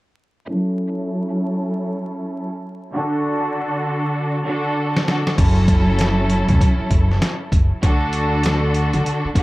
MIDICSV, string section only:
0, 0, Header, 1, 2, 480
1, 0, Start_track
1, 0, Key_signature, 3, "minor"
1, 0, Tempo, 612245
1, 378, Time_signature, 4, 2, 24, 8
1, 7392, End_track
2, 0, Start_track
2, 0, Title_t, "String section"
2, 0, Program_c, 0, 48
2, 360, Note_on_c, 0, 54, 95
2, 367, Note_on_c, 0, 61, 89
2, 375, Note_on_c, 0, 64, 90
2, 382, Note_on_c, 0, 69, 110
2, 1939, Note_off_c, 0, 54, 0
2, 1942, Note_off_c, 0, 61, 0
2, 1946, Note_off_c, 0, 64, 0
2, 1950, Note_off_c, 0, 69, 0
2, 2284, Note_on_c, 0, 50, 99
2, 2292, Note_on_c, 0, 62, 90
2, 2300, Note_on_c, 0, 66, 98
2, 2307, Note_on_c, 0, 69, 104
2, 3417, Note_off_c, 0, 50, 0
2, 3421, Note_off_c, 0, 62, 0
2, 3425, Note_off_c, 0, 66, 0
2, 3429, Note_off_c, 0, 69, 0
2, 3481, Note_on_c, 0, 50, 86
2, 3488, Note_on_c, 0, 62, 81
2, 3496, Note_on_c, 0, 66, 81
2, 3503, Note_on_c, 0, 69, 96
2, 3940, Note_off_c, 0, 50, 0
2, 3943, Note_off_c, 0, 62, 0
2, 3948, Note_off_c, 0, 66, 0
2, 3951, Note_off_c, 0, 69, 0
2, 3969, Note_on_c, 0, 50, 70
2, 3976, Note_on_c, 0, 62, 68
2, 3984, Note_on_c, 0, 66, 68
2, 3991, Note_on_c, 0, 69, 84
2, 4199, Note_off_c, 0, 50, 0
2, 4201, Note_on_c, 0, 54, 101
2, 4202, Note_off_c, 0, 62, 0
2, 4206, Note_off_c, 0, 66, 0
2, 4208, Note_on_c, 0, 61, 89
2, 4210, Note_off_c, 0, 69, 0
2, 4217, Note_on_c, 0, 64, 87
2, 4224, Note_on_c, 0, 69, 110
2, 5779, Note_off_c, 0, 54, 0
2, 5783, Note_off_c, 0, 61, 0
2, 5787, Note_off_c, 0, 64, 0
2, 5791, Note_off_c, 0, 69, 0
2, 6125, Note_on_c, 0, 50, 99
2, 6134, Note_on_c, 0, 62, 87
2, 6141, Note_on_c, 0, 66, 96
2, 6149, Note_on_c, 0, 69, 105
2, 7258, Note_off_c, 0, 50, 0
2, 7262, Note_off_c, 0, 62, 0
2, 7266, Note_off_c, 0, 66, 0
2, 7270, Note_off_c, 0, 69, 0
2, 7322, Note_on_c, 0, 50, 94
2, 7330, Note_on_c, 0, 62, 86
2, 7337, Note_on_c, 0, 66, 81
2, 7345, Note_on_c, 0, 69, 100
2, 7392, Note_off_c, 0, 50, 0
2, 7392, Note_off_c, 0, 62, 0
2, 7392, Note_off_c, 0, 66, 0
2, 7392, Note_off_c, 0, 69, 0
2, 7392, End_track
0, 0, End_of_file